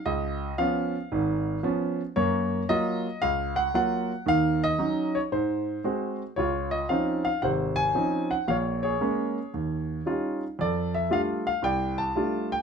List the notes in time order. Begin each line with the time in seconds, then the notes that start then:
0.06 C#2 D#5
0.58 F3 B3 C#4 F5
1.12 G#1 G#2
1.63 F3 B3 C#4
2.16 F#2 A#3 C#5
2.69 F#3 A#3 F4 D#5
3.22 C#2 F5
3.56 F#5
3.74 F#3 A#3 F4 F#5
4.26 D#2 D#3 F5
4.64 D#5
4.78 F#3 C#4 D#4
5.15 C#5
5.32 G#2 C5
5.84 G#3 C4 F#4
6.36 C#2 F4 C#5
6.71 D#5
6.89 F3 C4 C#4 D#4 F5
7.25 F5
7.42 G#1 C3 C5 F#5
7.76 G#5
7.95 F3 C4 C#4 D#4
8.31 F#5
8.48 A#1 A#2 C#5 F5
8.83 G#4 C#5
9.01 G#3 A#3 C#4
9.54 D#2
10.06 G3 C#4 D#4 F4
10.59 F2 A4 D5
10.94 E5
11.10 G3 A3 D4 F4 F5
11.47 F5
11.62 C2 D5 G5
11.98 A5
12.15 G3 A3 D4 F4
12.52 G5